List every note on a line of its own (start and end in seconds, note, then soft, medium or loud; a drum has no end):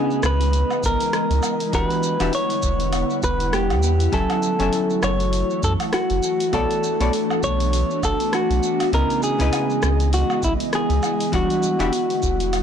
0.00 1.70 C#3 medium
0.00 1.69 E3 medium
0.00 1.71 G#3 medium
0.00 1.69 B3 medium
0.00 1.71 B3 medium
0.00 1.70 C#4 medium
0.00 1.70 E4 medium
0.00 6.50 E4 medium
0.00 0.25 G#4 loud
0.00 1.71 D#5 loud
0.00 1.71 D#5 medium
0.11 shaker soft
0.23 0.64 C#2 medium
0.23 0.85 B4 loud
0.23 cross-stick medium
0.23 shaker medium
0.41 open hi-hat soft
0.41 shaker soft
0.53 open hi-hat medium
0.53 shaker soft
0.71 low woodblock medium
0.71 shaker soft
0.83 0.97 G#1 medium
0.83 1.74 A#4 loud
0.83 kick loud
0.83 shaker medium
1.00 open hi-hat soft
1.00 shaker soft
1.13 cross-stick medium
1.13 open hi-hat medium
1.13 shaker soft
1.30 1.40 C#2 loud
1.30 open hi-hat soft
1.30 shaker soft
1.43 low woodblock medium
1.43 shaker medium
1.60 open hi-hat soft
1.60 shaker soft
1.72 1.87 E1 loud
1.72 4.11 D3 medium
1.72 2.16 E3 medium
1.72 4.11 G3 medium
1.72 4.11 B3 medium
1.72 2.16 D4 medium
1.72 2.16 F#4 medium
1.72 2.17 G4 medium
1.72 1.86 A#4 loud
1.72 4.11 F#5 medium
1.72 2.17 F#5 medium
1.72 kick loud
1.72 open hi-hat medium
1.72 shaker soft
1.86 2.34 B4 loud
1.90 open hi-hat soft
1.90 shaker soft
2.03 shaker medium
2.20 2.30 E1 loud
2.20 2.31 E3 medium
2.20 2.31 D4 medium
2.20 2.31 F#4 medium
2.20 2.32 G4 medium
2.20 2.32 E5 medium
2.20 open hi-hat soft
2.20 low woodblock medium
2.20 shaker soft
2.33 3.20 C#5 loud
2.33 open hi-hat medium
2.33 shaker soft
2.50 open hi-hat soft
2.50 shaker soft
2.62 3.04 E1 medium
2.62 kick loud
2.62 shaker medium
2.80 open hi-hat soft
2.80 shaker soft
2.93 open hi-hat medium
2.93 low woodblock medium
2.93 shaker soft
3.10 shaker soft
3.23 3.72 E1 medium
3.23 3.55 B4 loud
3.23 kick loud
3.23 shaker medium
3.40 open hi-hat soft
3.40 shaker soft
3.53 4.15 G4 loud
3.53 cross-stick medium
3.53 open hi-hat soft
3.53 shaker soft
3.70 4.09 E2 loud
3.70 open hi-hat soft
3.70 low woodblock medium
3.70 shaker soft
3.83 shaker medium
4.00 open hi-hat soft
4.00 shaker soft
4.12 4.27 F#1 loud
4.12 11.29 E3 medium
4.12 4.56 F#3 medium
4.12 8.89 A3 medium
4.12 4.56 C#4 medium
4.12 8.89 F#4 medium
4.12 4.56 A4 medium
4.12 5.04 A4 loud
4.12 4.57 E5 medium
4.12 4.56 G#5 medium
4.12 kick loud
4.12 open hi-hat soft
4.12 shaker soft
4.30 open hi-hat soft
4.30 low woodblock medium
4.30 shaker soft
4.43 shaker medium
4.59 4.70 F#1 loud
4.59 6.49 F#3 medium
4.59 6.50 C#4 medium
4.59 6.51 A4 medium
4.59 6.51 E5 loud
4.59 6.50 G#5 medium
4.59 open hi-hat soft
4.59 shaker soft
4.73 open hi-hat medium
4.73 shaker soft
4.90 shaker soft
5.03 5.44 F#1 medium
5.03 5.64 C#5 loud
5.03 cross-stick medium
5.03 low woodblock medium
5.03 shaker medium
5.20 open hi-hat soft
5.20 shaker soft
5.33 open hi-hat medium
5.33 shaker medium
5.50 shaker soft
5.63 5.77 F#2 medium
5.63 5.72 A4 loud
5.63 kick loud
5.63 shaker medium
5.80 open hi-hat soft
5.80 low woodblock medium
5.80 shaker soft
5.93 6.55 F#4 medium
5.93 cross-stick medium
5.93 open hi-hat medium
5.93 shaker soft
6.10 6.20 F#1 loud
6.10 open hi-hat soft
6.10 shaker soft
6.23 shaker medium
6.40 open hi-hat soft
6.40 shaker soft
6.53 6.67 B1 loud
6.53 6.96 B3 medium
6.53 12.63 B3 medium
6.53 8.91 D4 medium
6.53 6.96 F#4 medium
6.53 6.96 A4 medium
6.53 7.44 A4 loud
6.53 6.97 C#5 medium
6.53 6.97 D5 medium
6.53 kick loud
6.53 open hi-hat soft
6.53 low woodblock medium
6.53 shaker soft
6.71 open hi-hat soft
6.71 shaker soft
6.84 shaker medium
7.00 7.10 B1 loud
7.00 7.11 B3 medium
7.00 7.12 F#4 medium
7.00 7.12 A4 medium
7.00 7.12 C#5 medium
7.00 7.12 D5 medium
7.00 open hi-hat soft
7.00 shaker soft
7.13 open hi-hat medium
7.13 shaker soft
7.30 low woodblock medium
7.30 shaker soft
7.43 7.84 B1 medium
7.43 8.04 C#5 loud
7.43 kick medium
7.43 shaker medium
7.60 open hi-hat soft
7.60 shaker soft
7.73 open hi-hat medium
7.73 shaker soft
7.90 shaker soft
8.03 8.16 F#1 medium
8.03 8.35 A4 loud
8.03 kick loud
8.03 low woodblock medium
8.03 shaker medium
8.20 open hi-hat soft
8.20 shaker soft
8.33 8.90 F#4 loud
8.33 cross-stick medium
8.33 open hi-hat medium
8.33 shaker soft
8.50 8.60 B1 medium
8.50 open hi-hat soft
8.50 shaker soft
8.63 shaker medium
8.80 open hi-hat soft
8.80 low woodblock medium
8.80 shaker soft
8.93 9.06 C#2 loud
8.93 9.36 C#3 medium
8.93 11.31 G#3 medium
8.93 9.37 B3 medium
8.93 9.36 C#4 medium
8.93 9.36 E4 medium
8.93 12.63 E4 medium
8.93 9.23 A#4 loud
8.93 11.31 D#5 medium
8.93 9.37 D#5 medium
8.93 kick loud
8.93 open hi-hat medium
8.93 shaker soft
9.10 open hi-hat soft
9.10 shaker soft
9.23 10.09 G#4 loud
9.23 shaker medium
9.39 9.50 C#2 loud
9.39 11.29 C#3 medium
9.39 11.30 C#4 medium
9.39 11.30 E4 medium
9.39 11.30 B4 medium
9.39 11.31 D#5 medium
9.39 open hi-hat soft
9.39 shaker soft
9.53 open hi-hat medium
9.53 low woodblock medium
9.53 shaker soft
9.70 shaker soft
9.83 10.24 C#2 loud
9.83 cross-stick medium
9.83 shaker medium
10.00 open hi-hat soft
10.00 shaker soft
10.13 10.44 F#4 loud
10.13 open hi-hat medium
10.13 shaker soft
10.30 low woodblock medium
10.30 shaker soft
10.43 10.56 G#1 medium
10.43 10.52 E4 medium
10.43 kick loud
10.43 shaker medium
10.60 open hi-hat soft
10.60 shaker soft
10.73 11.35 G#4 loud
10.73 cross-stick medium
10.73 open hi-hat medium
10.73 shaker soft
10.90 11.00 C#2 loud
10.90 open hi-hat soft
10.90 shaker soft
11.03 low woodblock medium
11.03 shaker medium
11.20 open hi-hat soft
11.20 shaker soft
11.32 11.47 E1 loud
11.32 12.63 D3 medium
11.32 11.76 E3 medium
11.32 12.63 G3 medium
11.32 11.76 G3 medium
11.32 11.76 D4 medium
11.32 11.76 F#4 medium
11.32 12.63 F#4 loud
11.32 12.63 F#4 medium
11.32 11.77 F#5 medium
11.32 kick loud
11.32 open hi-hat medium
11.32 shaker soft
11.50 open hi-hat soft
11.50 shaker soft
11.63 shaker medium
11.79 11.90 E1 loud
11.79 11.91 E3 medium
11.79 11.91 D4 medium
11.79 11.91 F#4 medium
11.79 11.91 G4 medium
11.79 11.92 E5 medium
11.79 open hi-hat soft
11.79 low woodblock medium
11.79 shaker soft
11.93 open hi-hat medium
11.93 shaker soft
12.10 open hi-hat soft
12.10 shaker soft
12.23 12.63 E1 loud
12.23 kick loud
12.23 shaker medium
12.40 open hi-hat soft
12.40 shaker soft
12.53 open hi-hat medium
12.53 low woodblock medium
12.53 shaker soft